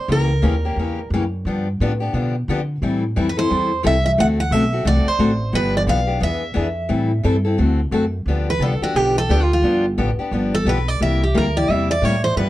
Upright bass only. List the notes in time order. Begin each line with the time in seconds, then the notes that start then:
0.08 C#2
0.43 D#2
0.76 E2
1.10 F#2
1.45 G2
1.80 A2
2.13 B2
2.48 D3
2.82 A2
3.16 F2
3.51 E2
3.85 C2
4.18 D2
4.51 B1
4.85 C2
5.05 muted upright bass stroke
5.19 A1
5.53 G1
5.87 B1
6.22 E2
6.56 F2
6.90 A2
7.24 G2
7.59 D2
7.91 F#2
8.26 D2
8.59 C2
8.81 muted upright bass stroke
8.94 B1
9.29 D2
9.62 G1
9.98 A1
10.18 muted upright bass stroke
10.31 G1
10.65 B1
11.01 C2
11.35 D2
11.69 E2
12.02 A2
12.36 G2